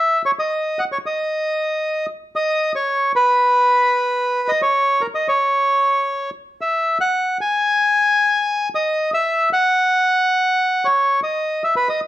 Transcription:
Already playing: E5
0.26 C#5
0.39 D#5
0.79 F#5
0.92 C#5
1.06 D#5
2.36 D#5
2.75 C#5
3.16 B4
4.48 D#5
4.62 C#5
5.01 A#4
5.15 D#5
5.28 C#5
6.61 E5
7.01 F#5
7.41 G#5
8.75 D#5
9.14 E5
9.53 F#5
10.85 C#5
11.23 D#5
11.64 E5
11.76 B4
11.89 D#5

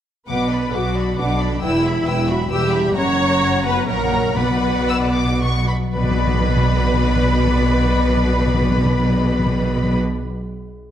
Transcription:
0.28 B1 B2 B3 B4 F#5 D6
0.40 D4
0.50 F#4 D5 B5
0.63 B4
0.73 B1 B2 F#3 F#4 B4 F#5 D6
0.85 B5
0.96 D5 F#5 B5
1.07 D5
1.16 B1 B2 D3 D4 F#4 B4 F#5 D6
1.29 F#3
1.39 D4 D5 B5
1.52 F#3
1.62 E1 E2 E3 E4 B4 G5 E6
1.75 B3
1.84 G4 E5 B5
1.97 B4
2.06 E1 E2 B4 G5 E6
2.18 B5
2.27 F#3 F#4 E5 G5 B5
2.40 B4
2.50 E1 E2 G3 G4 B4 G5 E6
2.62 B2
2.72 B3 E5 B5
2.85 B2
2.94 F#1 F#2 C#4 C#5 F#5 A#5
3.07 F#3
3.18 F#4
3.30 A#4
3.42 F#5
3.53 A#5
3.64 B3 B4 F#5
3.76 F#4
3.87 A#1 A#2 F#3 A#3 A#4 C#5 F#5 A#5
4.00 C#3
4.13 F#3
4.25 C#3
4.35 B1 B2 B3 B4 D5 F#5 B5
4.50 F#3
4.62 F#4
4.75 D5
4.88 F#5 E6
5.01 D6
5.14 F#5 D6
5.28 F#4
5.40 F#3 C#6
5.54 B3
5.68 F#3 B5
5.81 B3
5.95 B1 B2 B3 B4 D5 B5
6.02 B2 F#3
6.09 B2 B3
6.16 B2 F#4
6.23 B2 D5
6.30 B2 F#5
6.41 B2
6.48 B2
6.56 B2
6.64 B2
6.72 B2
6.79 B2
6.87 B2
6.94 B2
7.01 B2
7.09 B2
7.16 B2
7.23 B2
7.31 B2
7.38 B2
7.47 B2
7.54 B2
7.62 B2
7.69 B2
7.77 B2
7.85 B2
7.94 B2
8.01 B2
8.09 B2
8.17 B2
8.25 B2
8.32 B2
8.39 B2
8.47 B2
8.54 B2
8.62 B2
8.70 B2
8.77 B2
8.85 B2
8.93 B2
9.00 B2
9.09 B2
9.16 B2
9.24 B2
9.32 B2
9.39 B2
9.46 B2
9.54 B2
9.61 B2
9.69 B2
9.77 B2
9.84 B2
9.92 B2

